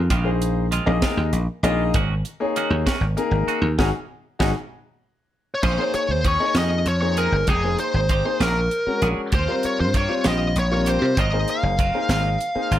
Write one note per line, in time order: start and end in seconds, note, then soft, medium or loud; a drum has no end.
0.10 0.78 A#1 medium
0.10 0.29 D#3 medium
0.10 0.29 G#3 medium
0.10 0.29 C4 medium
0.10 0.29 F4 medium
0.10 kick loud
0.10 closed hi-hat medium
0.25 0.65 A#3 medium
0.25 0.65 D#4 medium
0.25 0.65 G#4 medium
0.25 0.65 C5 medium
0.42 closed hi-hat medium
0.71 0.90 D#3 medium
0.71 0.90 G#3 medium
0.71 0.91 C4 medium
0.71 0.91 F4 medium
0.71 closed hi-hat medium
0.86 1.00 A#1 medium
0.86 1.36 A#3 medium
0.86 1.36 D#4 medium
0.86 1.36 G#4 medium
0.86 1.36 D#5 medium
1.02 1.21 D#3 medium
1.02 1.21 G#3 medium
1.02 1.21 C4 medium
1.02 1.21 F4 medium
1.02 kick medium
1.02 snare loud
1.02 closed hi-hat medium
1.17 1.31 D#2 medium
1.33 1.46 A#1 medium
1.33 closed hi-hat medium
1.63 1.91 A#1 medium
1.63 1.83 G#3 soft
1.63 1.95 A#3 medium
1.63 1.83 C4 soft
1.63 1.94 D#4 medium
1.63 1.83 F4 medium
1.63 1.95 G#4 medium
1.63 1.95 D#5 loud
1.63 closed hi-hat medium
1.94 2.22 G#1 loud
1.94 2.13 D#3 medium
1.94 2.13 A#3 medium
1.94 2.13 C#4 medium
1.94 2.14 F#4 loud
1.94 kick loud
1.94 closed hi-hat medium
2.25 closed hi-hat medium
2.40 2.90 A#3 medium
2.40 2.90 D#4 medium
2.40 2.90 G#4 medium
2.40 2.90 C#5 medium
2.56 2.75 D#3 medium
2.56 2.75 A#3 medium
2.56 2.75 C#4 medium
2.56 2.75 F#4 medium
2.56 closed hi-hat medium
2.70 2.84 D#2 medium
2.86 3.06 D#3 medium
2.86 3.05 A#3 medium
2.86 3.05 C#4 medium
2.86 3.05 F#4 medium
2.86 kick medium
2.86 snare loud
2.86 closed hi-hat medium
3.01 3.15 G#1 medium
3.17 3.67 A#3 medium
3.17 3.67 D#4 medium
3.17 3.67 G#4 medium
3.17 3.67 A#4 medium
3.17 closed hi-hat soft
3.31 3.46 G#1 medium
3.48 3.67 A#3 soft
3.48 3.67 C#4 soft
3.48 3.67 F#4 medium
3.48 closed hi-hat medium
3.62 3.76 D#2 medium
3.78 3.90 G#1 medium
3.78 3.89 G#3 medium
3.78 3.89 C#4 medium
3.78 3.89 D#4 medium
3.78 3.89 F#4 medium
3.78 3.89 G#4 medium
3.78 kick medium
3.78 snare medium
4.39 4.52 G#1 medium
4.39 4.51 G#3 loud
4.39 4.51 C#4 medium
4.39 4.50 D#4 medium
4.39 4.51 D#4 medium
4.39 4.50 F#4 medium
4.39 4.50 G#4 medium
4.39 kick medium
4.39 snare medium
5.54 5.62 C#5 medium
5.63 5.77 A#1 medium
5.63 5.82 F3 medium
5.63 5.82 C4 medium
5.63 5.82 C#4 medium
5.63 5.82 G#4 medium
5.63 5.95 C5 medium
5.63 kick medium
5.63 crash medium
5.78 6.18 A#3 medium
5.78 6.18 D#4 medium
5.78 6.18 G#4 medium
5.78 6.18 C#5 medium
5.94 6.11 C#5 medium
5.94 muted slap bass stroke soft
5.94 closed hi-hat medium
6.09 6.36 D#2 medium
6.09 6.28 C5 medium
6.24 6.43 F3 medium
6.24 6.44 C4 medium
6.24 6.44 C#4 medium
6.24 6.44 G#4 medium
6.24 6.58 C#5 medium
6.24 kick medium
6.24 closed hi-hat medium
6.40 6.80 A#3 medium
6.40 6.80 D#4 medium
6.40 6.80 G#4 medium
6.40 6.80 D#5 medium
6.54 6.82 F2 medium
6.54 6.75 F3 soft
6.54 6.75 C4 soft
6.54 6.74 C#4 medium
6.54 6.74 G#4 medium
6.54 snare medium
6.54 closed hi-hat medium
6.59 6.88 D#5 medium
6.86 7.27 F2 medium
6.86 7.00 C#5 medium
6.86 closed hi-hat soft
7.02 7.41 A#3 medium
7.02 7.42 D#4 medium
7.02 7.42 G#4 medium
7.02 7.42 C5 medium
7.02 7.17 C#5 medium
7.17 7.36 C4 soft
7.17 7.36 C#4 soft
7.17 7.36 G#4 soft
7.17 7.46 A#4 medium
7.17 closed hi-hat medium
7.32 7.46 G1 medium
7.47 7.75 F1 medium
7.47 7.66 G#3 medium
7.47 7.67 C4 medium
7.47 7.67 D#4 medium
7.47 7.67 G4 medium
7.47 7.77 G#4 medium
7.47 kick medium
7.47 closed hi-hat medium
7.64 8.03 A#3 medium
7.64 8.03 D#4 medium
7.64 8.03 G#4 medium
7.64 8.03 C5 medium
7.79 8.42 C5 medium
7.79 closed hi-hat soft
7.94 8.21 G#1 medium
8.09 8.28 G#3 medium
8.09 8.28 C4 medium
8.09 8.28 D#4 medium
8.09 8.29 G4 medium
8.09 kick medium
8.09 closed hi-hat medium
8.25 8.40 A#3 medium
8.25 8.40 D#4 medium
8.25 8.40 G#4 medium
8.25 8.40 C5 medium
8.40 8.67 A#1 medium
8.40 8.59 F#3 soft
8.40 8.59 C#4 medium
8.40 8.59 D4 medium
8.40 8.59 G#4 medium
8.40 9.06 A#4 medium
8.40 snare medium
8.40 closed hi-hat medium
8.71 closed hi-hat soft
8.86 9.26 G#3 medium
8.86 9.26 C#4 medium
8.86 9.26 F#4 medium
8.86 9.26 A#4 medium
8.86 muted slap bass stroke soft
9.02 9.15 A#1 medium
9.02 9.21 C#4 soft
9.02 9.21 D4 soft
9.02 9.20 G#4 soft
9.02 closed hi-hat medium
9.32 9.46 D#2 medium
9.32 9.51 F3 medium
9.32 9.51 A#3 medium
9.32 9.51 C4 medium
9.32 9.51 G4 medium
9.32 9.65 C5 medium
9.32 kick medium
9.32 closed hi-hat medium
9.48 9.88 G3 medium
9.48 9.87 C4 medium
9.48 9.87 F4 medium
9.48 9.88 A#4 medium
9.63 9.80 C#5 medium
9.63 muted slap bass stroke soft
9.63 closed hi-hat medium
9.80 10.07 G2 medium
9.80 9.95 C5 medium
9.94 10.12 F3 medium
9.94 10.13 A#3 medium
9.94 10.13 C4 medium
9.94 10.13 G4 medium
9.94 10.27 C#5 medium
9.94 kick medium
9.94 closed hi-hat medium
10.09 10.48 G3 medium
10.09 10.49 C4 medium
10.09 10.48 F4 medium
10.09 10.49 C5 medium
10.24 10.52 A#1 medium
10.24 10.43 F3 soft
10.24 10.43 A#3 soft
10.24 10.43 C4 medium
10.24 10.43 G4 medium
10.24 10.58 D#5 medium
10.24 snare medium
10.24 closed hi-hat medium
10.56 10.97 A#1 medium
10.56 10.72 C#5 medium
10.56 closed hi-hat medium
10.71 11.10 G3 medium
10.71 11.10 C4 medium
10.71 11.10 F4 medium
10.71 11.10 A#4 medium
10.71 10.89 C#5 medium
10.86 11.05 A#3 soft
10.86 11.05 C4 soft
10.86 11.05 G4 soft
10.86 11.19 C5 medium
10.86 closed hi-hat medium
11.02 11.15 C3 medium
11.17 11.44 G#1 medium
11.17 11.36 F#3 medium
11.17 11.36 A#3 medium
11.17 11.36 C4 medium
11.17 11.36 F4 medium
11.17 11.47 D#5 medium
11.17 kick medium
11.17 closed hi-hat medium
11.33 11.72 A#3 medium
11.33 11.72 D#4 medium
11.33 11.72 G#4 medium
11.33 11.72 C5 medium
11.48 12.09 F5 medium
11.48 closed hi-hat soft
11.63 11.90 F#1 medium
11.79 11.97 F#3 medium
11.79 11.97 A#3 medium
11.79 11.97 C4 medium
11.79 11.98 F4 medium
11.79 kick medium
11.79 closed hi-hat medium
11.94 12.34 A#3 medium
11.94 12.34 D#4 medium
11.94 12.33 G#4 medium
11.94 12.34 C5 medium
12.09 12.36 G#1 medium
12.09 12.29 F#3 soft
12.09 12.28 A#3 medium
12.09 12.28 C4 medium
12.09 12.28 F4 medium
12.09 12.75 F5 medium
12.09 snare medium
12.09 closed hi-hat medium
12.41 closed hi-hat soft
12.55 12.79 A#3 medium
12.55 12.79 D#4 medium
12.55 12.79 G#4 medium
12.55 12.79 C5 medium
12.55 muted slap bass stroke soft
12.71 12.79 G#1 medium
12.71 12.79 A#3 soft
12.71 12.79 C4 soft
12.71 12.79 F4 soft
12.71 closed hi-hat medium